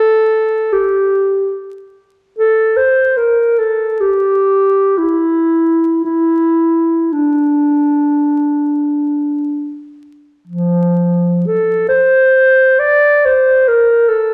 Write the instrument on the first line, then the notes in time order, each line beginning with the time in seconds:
clarinet
Already playing: A4
0.73 G4
2.38 A4
2.77 C5
3.17 A#4
3.59 A4
4.01 G4
4.98 E4
6.04 E4
7.13 D4
10.47 F3
11.47 A4
11.89 C5
12.80 D5
13.25 C5
13.68 A#4
14.09 A4